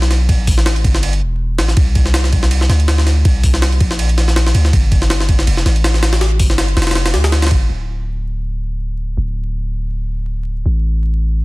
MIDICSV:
0, 0, Header, 1, 3, 480
1, 0, Start_track
1, 0, Tempo, 370370
1, 375, Time_signature, 4, 2, 24, 8
1, 14837, End_track
2, 0, Start_track
2, 0, Title_t, "808-style bass"
2, 0, Program_c, 0, 38
2, 0, Note_on_c, 0, 35, 92
2, 611, Note_on_c, 0, 33, 102
2, 631, Note_off_c, 0, 35, 0
2, 1076, Note_off_c, 0, 33, 0
2, 1093, Note_on_c, 0, 31, 95
2, 1571, Note_on_c, 0, 28, 81
2, 1591, Note_off_c, 0, 31, 0
2, 2053, Note_on_c, 0, 33, 87
2, 2072, Note_off_c, 0, 28, 0
2, 2272, Note_off_c, 0, 33, 0
2, 2291, Note_on_c, 0, 36, 97
2, 3475, Note_off_c, 0, 36, 0
2, 3489, Note_on_c, 0, 38, 80
2, 4195, Note_off_c, 0, 38, 0
2, 4212, Note_on_c, 0, 36, 98
2, 4916, Note_off_c, 0, 36, 0
2, 4931, Note_on_c, 0, 34, 96
2, 5876, Note_off_c, 0, 34, 0
2, 5891, Note_on_c, 0, 38, 92
2, 6111, Note_off_c, 0, 38, 0
2, 6132, Note_on_c, 0, 31, 96
2, 7076, Note_off_c, 0, 31, 0
2, 7090, Note_on_c, 0, 29, 86
2, 7311, Note_off_c, 0, 29, 0
2, 7329, Note_on_c, 0, 33, 94
2, 8290, Note_on_c, 0, 31, 99
2, 8310, Note_off_c, 0, 33, 0
2, 8755, Note_off_c, 0, 31, 0
2, 8769, Note_on_c, 0, 29, 95
2, 9251, Note_on_c, 0, 38, 83
2, 9271, Note_off_c, 0, 29, 0
2, 9731, Note_on_c, 0, 31, 87
2, 9750, Note_off_c, 0, 38, 0
2, 9951, Note_off_c, 0, 31, 0
2, 9972, Note_on_c, 0, 26, 87
2, 11872, Note_off_c, 0, 26, 0
2, 11890, Note_on_c, 0, 26, 87
2, 13791, Note_off_c, 0, 26, 0
2, 13811, Note_on_c, 0, 33, 86
2, 14837, Note_off_c, 0, 33, 0
2, 14837, End_track
3, 0, Start_track
3, 0, Title_t, "Drums"
3, 27, Note_on_c, 9, 38, 52
3, 137, Note_off_c, 9, 38, 0
3, 137, Note_on_c, 9, 38, 49
3, 137, Note_on_c, 9, 51, 68
3, 267, Note_off_c, 9, 38, 0
3, 267, Note_off_c, 9, 51, 0
3, 374, Note_on_c, 9, 36, 109
3, 376, Note_on_c, 9, 51, 83
3, 503, Note_off_c, 9, 36, 0
3, 505, Note_off_c, 9, 51, 0
3, 613, Note_on_c, 9, 36, 97
3, 614, Note_on_c, 9, 46, 80
3, 743, Note_off_c, 9, 36, 0
3, 743, Note_off_c, 9, 46, 0
3, 746, Note_on_c, 9, 38, 57
3, 853, Note_off_c, 9, 38, 0
3, 853, Note_on_c, 9, 38, 122
3, 853, Note_on_c, 9, 51, 91
3, 983, Note_off_c, 9, 38, 0
3, 983, Note_off_c, 9, 51, 0
3, 985, Note_on_c, 9, 51, 44
3, 1093, Note_on_c, 9, 36, 96
3, 1095, Note_off_c, 9, 51, 0
3, 1095, Note_on_c, 9, 51, 68
3, 1223, Note_off_c, 9, 36, 0
3, 1224, Note_off_c, 9, 51, 0
3, 1225, Note_on_c, 9, 38, 55
3, 1334, Note_on_c, 9, 51, 88
3, 1354, Note_off_c, 9, 38, 0
3, 1463, Note_off_c, 9, 51, 0
3, 1465, Note_on_c, 9, 51, 44
3, 1595, Note_off_c, 9, 51, 0
3, 2054, Note_on_c, 9, 38, 104
3, 2054, Note_on_c, 9, 51, 80
3, 2183, Note_off_c, 9, 38, 0
3, 2183, Note_on_c, 9, 38, 40
3, 2184, Note_off_c, 9, 51, 0
3, 2290, Note_on_c, 9, 51, 86
3, 2293, Note_on_c, 9, 36, 107
3, 2312, Note_off_c, 9, 38, 0
3, 2420, Note_off_c, 9, 51, 0
3, 2422, Note_off_c, 9, 36, 0
3, 2531, Note_on_c, 9, 51, 67
3, 2533, Note_on_c, 9, 36, 91
3, 2660, Note_off_c, 9, 51, 0
3, 2662, Note_off_c, 9, 36, 0
3, 2664, Note_on_c, 9, 38, 47
3, 2771, Note_off_c, 9, 38, 0
3, 2771, Note_on_c, 9, 38, 117
3, 2771, Note_on_c, 9, 51, 92
3, 2901, Note_off_c, 9, 38, 0
3, 2901, Note_off_c, 9, 51, 0
3, 2903, Note_on_c, 9, 38, 50
3, 3013, Note_on_c, 9, 36, 93
3, 3013, Note_on_c, 9, 51, 66
3, 3033, Note_off_c, 9, 38, 0
3, 3143, Note_off_c, 9, 36, 0
3, 3143, Note_off_c, 9, 51, 0
3, 3146, Note_on_c, 9, 38, 55
3, 3252, Note_on_c, 9, 51, 89
3, 3275, Note_off_c, 9, 38, 0
3, 3382, Note_off_c, 9, 51, 0
3, 3384, Note_on_c, 9, 38, 37
3, 3493, Note_off_c, 9, 38, 0
3, 3493, Note_on_c, 9, 38, 46
3, 3493, Note_on_c, 9, 51, 68
3, 3623, Note_off_c, 9, 38, 0
3, 3623, Note_off_c, 9, 51, 0
3, 3626, Note_on_c, 9, 51, 43
3, 3733, Note_off_c, 9, 51, 0
3, 3733, Note_on_c, 9, 38, 115
3, 3733, Note_on_c, 9, 51, 85
3, 3862, Note_off_c, 9, 38, 0
3, 3862, Note_off_c, 9, 51, 0
3, 3867, Note_on_c, 9, 38, 53
3, 3975, Note_off_c, 9, 38, 0
3, 3975, Note_on_c, 9, 38, 47
3, 3975, Note_on_c, 9, 51, 70
3, 4104, Note_off_c, 9, 38, 0
3, 4104, Note_off_c, 9, 51, 0
3, 4214, Note_on_c, 9, 36, 107
3, 4214, Note_on_c, 9, 51, 88
3, 4343, Note_off_c, 9, 36, 0
3, 4343, Note_off_c, 9, 51, 0
3, 4452, Note_on_c, 9, 46, 80
3, 4453, Note_on_c, 9, 36, 95
3, 4581, Note_off_c, 9, 46, 0
3, 4583, Note_off_c, 9, 36, 0
3, 4585, Note_on_c, 9, 38, 57
3, 4693, Note_off_c, 9, 38, 0
3, 4693, Note_on_c, 9, 38, 119
3, 4693, Note_on_c, 9, 51, 92
3, 4823, Note_off_c, 9, 38, 0
3, 4823, Note_off_c, 9, 51, 0
3, 4826, Note_on_c, 9, 51, 44
3, 4930, Note_off_c, 9, 51, 0
3, 4930, Note_on_c, 9, 51, 70
3, 4932, Note_on_c, 9, 36, 94
3, 5060, Note_off_c, 9, 51, 0
3, 5062, Note_off_c, 9, 36, 0
3, 5063, Note_on_c, 9, 38, 55
3, 5171, Note_on_c, 9, 51, 90
3, 5192, Note_off_c, 9, 38, 0
3, 5300, Note_off_c, 9, 51, 0
3, 5304, Note_on_c, 9, 51, 45
3, 5413, Note_off_c, 9, 51, 0
3, 5413, Note_on_c, 9, 38, 52
3, 5413, Note_on_c, 9, 51, 69
3, 5543, Note_off_c, 9, 38, 0
3, 5543, Note_off_c, 9, 51, 0
3, 5546, Note_on_c, 9, 38, 40
3, 5652, Note_off_c, 9, 38, 0
3, 5652, Note_on_c, 9, 38, 111
3, 5652, Note_on_c, 9, 51, 83
3, 5782, Note_off_c, 9, 38, 0
3, 5782, Note_off_c, 9, 51, 0
3, 5786, Note_on_c, 9, 38, 57
3, 5891, Note_on_c, 9, 51, 71
3, 5916, Note_off_c, 9, 38, 0
3, 6021, Note_off_c, 9, 51, 0
3, 6024, Note_on_c, 9, 38, 43
3, 6133, Note_on_c, 9, 36, 107
3, 6134, Note_on_c, 9, 51, 86
3, 6153, Note_off_c, 9, 38, 0
3, 6263, Note_off_c, 9, 36, 0
3, 6264, Note_off_c, 9, 51, 0
3, 6373, Note_on_c, 9, 36, 97
3, 6373, Note_on_c, 9, 51, 67
3, 6502, Note_off_c, 9, 36, 0
3, 6502, Note_off_c, 9, 51, 0
3, 6503, Note_on_c, 9, 38, 48
3, 6611, Note_off_c, 9, 38, 0
3, 6611, Note_on_c, 9, 38, 121
3, 6611, Note_on_c, 9, 51, 90
3, 6741, Note_off_c, 9, 38, 0
3, 6741, Note_off_c, 9, 51, 0
3, 6745, Note_on_c, 9, 38, 50
3, 6852, Note_on_c, 9, 36, 95
3, 6852, Note_on_c, 9, 51, 67
3, 6874, Note_off_c, 9, 38, 0
3, 6981, Note_off_c, 9, 51, 0
3, 6982, Note_off_c, 9, 36, 0
3, 6983, Note_on_c, 9, 38, 57
3, 7091, Note_on_c, 9, 51, 89
3, 7112, Note_off_c, 9, 38, 0
3, 7221, Note_off_c, 9, 51, 0
3, 7223, Note_on_c, 9, 38, 38
3, 7334, Note_off_c, 9, 38, 0
3, 7334, Note_on_c, 9, 38, 47
3, 7334, Note_on_c, 9, 51, 69
3, 7463, Note_off_c, 9, 38, 0
3, 7463, Note_off_c, 9, 51, 0
3, 7463, Note_on_c, 9, 51, 43
3, 7572, Note_off_c, 9, 51, 0
3, 7572, Note_on_c, 9, 38, 109
3, 7572, Note_on_c, 9, 51, 87
3, 7701, Note_off_c, 9, 38, 0
3, 7701, Note_off_c, 9, 51, 0
3, 7701, Note_on_c, 9, 38, 53
3, 7810, Note_off_c, 9, 38, 0
3, 7810, Note_on_c, 9, 38, 106
3, 7810, Note_on_c, 9, 51, 81
3, 7939, Note_off_c, 9, 38, 0
3, 7939, Note_off_c, 9, 51, 0
3, 7940, Note_on_c, 9, 38, 103
3, 7940, Note_on_c, 9, 51, 80
3, 8050, Note_off_c, 9, 38, 0
3, 8050, Note_off_c, 9, 51, 0
3, 8050, Note_on_c, 9, 38, 104
3, 8050, Note_on_c, 9, 51, 80
3, 8179, Note_off_c, 9, 38, 0
3, 8179, Note_off_c, 9, 51, 0
3, 8288, Note_on_c, 9, 46, 78
3, 8291, Note_on_c, 9, 36, 93
3, 8418, Note_off_c, 9, 46, 0
3, 8421, Note_off_c, 9, 36, 0
3, 8422, Note_on_c, 9, 38, 58
3, 8529, Note_off_c, 9, 38, 0
3, 8529, Note_on_c, 9, 38, 121
3, 8529, Note_on_c, 9, 51, 93
3, 8659, Note_off_c, 9, 38, 0
3, 8659, Note_off_c, 9, 51, 0
3, 8663, Note_on_c, 9, 51, 43
3, 8771, Note_off_c, 9, 51, 0
3, 8771, Note_on_c, 9, 38, 91
3, 8771, Note_on_c, 9, 51, 67
3, 8838, Note_off_c, 9, 38, 0
3, 8838, Note_off_c, 9, 51, 0
3, 8838, Note_on_c, 9, 38, 89
3, 8838, Note_on_c, 9, 51, 66
3, 8902, Note_off_c, 9, 38, 0
3, 8902, Note_off_c, 9, 51, 0
3, 8902, Note_on_c, 9, 38, 91
3, 8902, Note_on_c, 9, 51, 68
3, 8957, Note_off_c, 9, 38, 0
3, 8957, Note_off_c, 9, 51, 0
3, 8957, Note_on_c, 9, 38, 86
3, 8957, Note_on_c, 9, 51, 65
3, 9012, Note_off_c, 9, 38, 0
3, 9012, Note_off_c, 9, 51, 0
3, 9012, Note_on_c, 9, 38, 108
3, 9012, Note_on_c, 9, 51, 80
3, 9142, Note_off_c, 9, 38, 0
3, 9142, Note_off_c, 9, 51, 0
3, 9145, Note_on_c, 9, 38, 105
3, 9145, Note_on_c, 9, 51, 82
3, 9251, Note_off_c, 9, 38, 0
3, 9251, Note_off_c, 9, 51, 0
3, 9251, Note_on_c, 9, 38, 101
3, 9251, Note_on_c, 9, 51, 80
3, 9380, Note_off_c, 9, 38, 0
3, 9380, Note_off_c, 9, 51, 0
3, 9384, Note_on_c, 9, 38, 104
3, 9384, Note_on_c, 9, 51, 82
3, 9490, Note_off_c, 9, 38, 0
3, 9490, Note_off_c, 9, 51, 0
3, 9490, Note_on_c, 9, 38, 105
3, 9490, Note_on_c, 9, 51, 76
3, 9620, Note_off_c, 9, 38, 0
3, 9620, Note_off_c, 9, 51, 0
3, 9621, Note_on_c, 9, 38, 90
3, 9621, Note_on_c, 9, 51, 71
3, 9675, Note_off_c, 9, 38, 0
3, 9675, Note_off_c, 9, 51, 0
3, 9675, Note_on_c, 9, 38, 92
3, 9675, Note_on_c, 9, 51, 71
3, 9731, Note_off_c, 9, 51, 0
3, 9731, Note_on_c, 9, 51, 82
3, 9733, Note_on_c, 9, 36, 102
3, 9805, Note_off_c, 9, 38, 0
3, 9860, Note_off_c, 9, 51, 0
3, 9862, Note_off_c, 9, 36, 0
3, 14837, End_track
0, 0, End_of_file